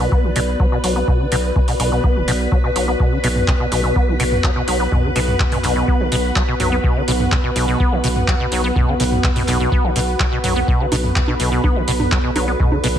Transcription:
Already playing: B3 F#4 B4 D5
0.12 B3, kick
0.24 B1 D3
0.36 B1 B2, open hi-hat
0.60 F#3, kick
0.72 B2
0.84 B1 F#3, open hi-hat
0.96 B3
1.08 B2, kick
1.20 D3
1.32 B1 B2, open hi-hat
1.56 B2, kick
1.68 B2, open hi-hat
1.80 B1 B2, open hi-hat
1.92 B2
2.04 B3, kick
2.16 F#1 D3
2.28 B1 B2, open hi-hat
2.52 F#3, kick
2.64 B2
2.76 B1 F#3, open hi-hat
2.88 B3
3.00 B2, kick
3.12 D3
3.24 B1 B2, open hi-hat
3.36 mid tom
3.48 B2, kick, clap
3.60 B2
3.72 B1 B2, open hi-hat
3.84 B2 F#5
3.96 B3, kick
4.08 B1 D3
4.20 B1 B2, open hi-hat
4.32 mid tom
4.44 F#3, kick, clap
4.56 B2
4.68 B1 F#3, open hi-hat
4.80 B3
4.92 B2, kick, mid tom
5.04 D3
5.16 B1 B2, open hi-hat
5.28 mid tom
5.40 B2, kick, clap
5.52 B2, mid tom, open hi-hat
5.64 B1 B2, clap, open hi-hat
5.76 B2
5.88 B3, kick
6.00 B1 D3
6.12 B1 B2, open hi-hat
6.36 F#3, kick, clap
6.48 B2
6.60 B1 F#3, mid tom, open hi-hat
6.72 B3
6.84 B2, kick
6.96 D3
7.08 B1 B2, open hi-hat
7.20 mid tom
7.32 B2, kick, clap
7.44 B2
7.56 B1 B2, open hi-hat
7.68 B2
7.80 B3, kick
7.92 B1 D3
8.04 B1 B2, open hi-hat
8.16 mid tom
8.28 F#3, kick, clap
8.40 B2
8.52 B1 F#3, open hi-hat
8.64 B3
8.76 B2, kick, mid tom
8.88 D3
9.00 B1 B2, open hi-hat
9.12 mid tom
9.24 B2, kick, clap
9.36 B2, mid tom, open hi-hat
9.48 B1 B2, clap, open hi-hat
9.60 B2
9.72 B3 A4, kick
9.84 B1 D3
9.96 B1 B2, open hi-hat
10.20 F#3, kick, clap
10.32 B2
10.44 B1 F#3, mid tom, open hi-hat
10.56 B3
10.68 B2 B4, kick
10.80 D3
10.92 B1 B2, open hi-hat, high conga
11.04 mid tom
11.16 B2, kick, clap
11.28 B2, high conga
11.40 B1 B2, open hi-hat
11.52 B2 D5
11.64 B3, kick, high conga
11.76 B1 D3
11.88 B1 B2, open hi-hat
12.00 mid tom, high conga
12.12 F#3, kick, clap
12.24 B2
12.36 B1 F#3, open hi-hat, high conga
12.48 B3
12.60 B2, kick, mid tom
12.72 D3, high conga
12.84 B1 B2, open hi-hat
12.96 mid tom

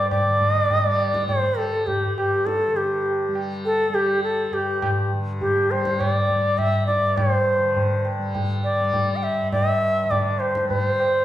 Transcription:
Already playing: G2 D3 G3
0.11 D5, tabla na, tabla ge
0.22 D3
0.41 tabla ge
0.70 tabla tin, tabla ge
0.84 G3
1.00 tabla na
1.14 tabla ke
1.28 C5, tabla tin, tabla ge
1.46 G3
1.58 A4, tabla na
1.87 G4, tabla tin, tabla ge
2.05 G2
2.17 G4, tabla na
2.46 A4, tabla te
2.67 D3
2.76 G4, tabla te
3.06 tabla tin
3.28 G3
3.35 tabla na
3.65 A4, tabla tin
3.89 G3
3.94 G4, tabla na
4.23 A4, tabla tin
4.51 G2 G4, tabla na
4.82 tabla na, tabla ge
5.13 D3
5.41 G4, tabla tin, tabla ge
5.71 G3 C5, tabla na
5.85 tabla ke
6.00 D5, tabla na, tabla ge
6.29 tabla ge
6.35 G3
6.58 E5, tabla na, tabla ge
6.87 D5, tabla te
6.97 G2
7.17 C5, tabla na, tabla ge
7.58 D3
7.76 tabla tin, tabla ge
8.05 tabla na
8.19 G3
8.35 tabla tin, tabla ge
8.64 D5, tabla na
8.80 G3
8.93 tabla tin, tabla ge
9.16 G5
9.23 E5, tabla na
9.42 G2
9.52 E5, tabla na, tabla ge
10.04 D3
10.11 D5, tabla tin, tabla ge
10.39 C5, tabla na
10.55 tabla ke
10.65 G3
10.69 C5, tabla tin, tabla ge
11.00 tabla na

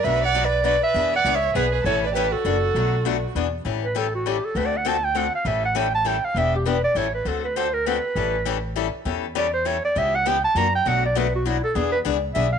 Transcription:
0.03 B1 B2 F#3 A3 D4 F#4 B4 E5
0.24 D5 F#5
0.35 B2 F#3 A3 D4 F#4
0.44 B4 D5
0.64 B2 F#3 A3 D4 F#4 B4 D5
0.82 B4 E5
0.94 E2 E3 B3 D4 G#4
1.14 D5 F#5
1.25 C#2 E3 B3 D4 G#4
1.35 C#5 E5
1.55 B1 E3 B3 D4 G#4 B4
1.72 G#4 B4
1.84 A1 E3 G3 C#4 E4 A4 C#5
2.04 B4 D5
2.14 E3 G3 C#4 E4 G4 A4 B4
2.32 F#4 A4
2.45 F#1 E3 A#3 D4 F#4
2.75 B1 B2 F#3 A3 D4 F#4
3.05 B2 F#3 A3 D4 F#4
3.35 E2 E3 B3 D4 G#4
3.65 A1 E3 G3 C#4 E4 A4
3.84 B4
3.95 E3 G3 C#4 E4 A4
4.15 F#4
4.26 E3 G3 C#4 E4 G4 A4
4.45 A4
4.55 D2 D3 A3 C4 F#4 A4 B4
4.66 D5
4.77 F#5
4.85 D3 A3 C4 F#4 A4 A5
5.04 G5
5.15 D3 A3 C4 F#4 A4 F#5
5.35 F5
5.45 A1 E3 G3 C#4 E4 A4 E5
5.65 F#5
5.75 E3 G3 C#4 E4 A4 G5
5.94 A5
6.05 E3 G3 C#4 E4 A4 G5
6.25 F5
6.34 E1 E3 B3 D4 G4 E5
6.56 G4
6.66 E3 B3 D4 G4 B4
6.84 D5
6.95 A1 E3 G3 C#4 E4 A4 C#5
7.14 B4
7.25 D2 D3 A3 C4 F#4 A4
7.44 B4
7.56 D3 A3 C4 F#4 A4 C5
7.73 A#4
7.86 D3 A3 C4 F#4 A4 B4
8.15 A1 E3 G3 C#4 E4 A4
8.45 E3 G3 C#4 E4 A4
8.76 E3 G3 C#4 E4 A4
9.05 E2 E3 G3 C#4 E4 A4
9.35 E3 G3 C#4 E4 A4 D5
9.54 C5
9.65 E3 G3 C#4 E4 A4 C#5
9.85 D5
9.95 C#2 C#3 E3 B3 C#4 G4 E5
10.15 F#5
10.25 C#3 E3 B3 C#4 G4 G5
10.44 A5
10.55 F#2 E3 A#3 D4 F#4 A#5
10.75 G5
10.85 B1 B2 F#3 A3 D4 F#4 F#5
11.05 D5
11.15 B2 F#3 A3 D4 F#4 B4
11.35 F#4
11.45 B2 F#3 A3 D4 E4 F#4
11.64 A4
11.75 E2 E3 B3 D4 G#4
11.92 B4
12.05 C#2 E3 B3 D4 G#4
12.34 B1 E3 B3 D4 G#4 E5
12.52 F5

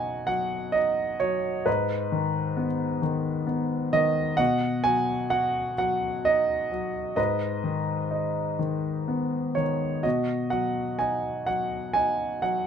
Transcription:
Already playing: B2 F#3 D#4 F#4 D#5 F#5 G#5
0.27 F#3 F#5
0.72 D#4 D#5
1.20 F#3 C#5
1.66 G#2 D#4 B4
2.12 D#3
2.57 B3
3.02 D#3
3.47 B3
3.93 D#3 D#5
4.37 B2 D#5 F#5
4.84 F#3 G#5
5.30 F#4 F#5
5.78 F#3 F#5
6.25 D#4 D#5
6.72 F#3
7.16 G#2 B4 D#5
7.64 D#3
8.11 D#4
8.59 D#3
9.08 B3
9.55 D#3 C#5
10.03 B2 F#4 D#5
10.50 F#3 F#5
10.99 D#4 G#5
11.46 F#3 F#5
11.93 D#4 G#5
12.42 F#3 F#5

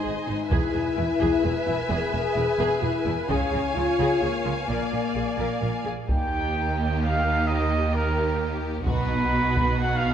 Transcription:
Already playing: C5 D#5 G#5
0.04 G#1 G#2 D#4 G#4
0.27 G#1 G#2 D#4
0.50 E1 E2 E4 G#4 B4 E5 G#5, taiko
0.72 E1 E2 G#4
0.96 E1 E2 E4
1.20 E1 E2 G#4, taiko
1.43 E1 E2 G#4 B4
1.66 E1 E2 E4
1.89 E1 E2 G#4
2.12 E1 E2 G#4
2.36 E1 E2 E4
2.59 E1 E2 G#4
2.82 E1 E2 E4 G#4
3.05 E1 E2 E4
3.29 C#2 C#3 C#4 G#4 C#5 F5 G#5, taiko
3.52 C#2 C#3 G#4
3.75 C#2 C#3 F4
3.99 C#2 C#3 G#4
4.21 C#2 C#3 A#3 G#4
4.45 C#2 C#3 F4
4.59 B3
4.68 A#1 A#2 A#3 A#4 D5
4.92 A#1 A#2 A#4
5.15 A#1 A#2 G#4
5.38 A#1 A#2 A#4
5.61 A#1 A#2 A#4
5.84 A#1 A#2 G#4
6.07 D#2 A#3 D#4 G4 G5, taiko
7.00 F5
7.47 A#3 D#4 D#5
7.94 A#4
8.86 B1 B2 B3 D#4 F#4 B4, taiko
9.57 taiko
9.79 F#5
9.95 F5

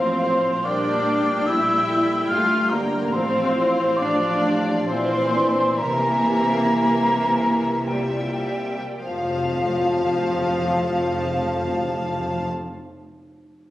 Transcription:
Already playing: A1 A2 F3 C4 A4 C5 F5 C6
0.24 C5
0.64 A#1 A#2 G3 D4 A#4 D5 G5 D6
1.46 G3 E4 G4 E5 E6
1.89 A4
2.27 G1 G2 A3 F4 G4 F5 F6
2.70 D3 A#3 A#4 A#5
3.13 A1 A2 F3 C4 F4 C5 F5 C6
3.57 E4
3.97 F3 D4 F4 D5 D6
4.44 G4
4.86 A#1 A#2 E3 C4 F4 C5 D5 C6
5.34 D4
5.79 C2 C3 E3 A#3 G4 A#4 E5 A#5
7.87 A#2 G3 E4 G4 E5 G5
9.05 F1 F2 F3 C4 F4 F5 A5
9.13 F2
9.19 F2
9.26 F2
9.33 F2
9.41 F2
9.49 F2
9.56 F2
9.63 F2
9.70 F2
9.77 F2
9.83 F2
9.90 F2
9.97 F2
10.03 F2
10.10 F2
10.17 F2
10.23 F2
10.30 F2
10.37 F2
10.45 F2
10.52 F2
10.58 F2
10.65 F2
10.73 F2
10.79 F2
10.86 F2
10.93 F2
11.00 F2
11.06 F2
11.13 F2
11.20 F2
11.27 F2
11.33 F2
11.40 F2
11.47 F2
11.54 F2
11.61 F2
11.69 F2
11.76 F2
11.83 F2
11.90 F2
11.97 F2
12.05 F2
12.12 F2
12.20 F2
12.27 F2
12.34 F2

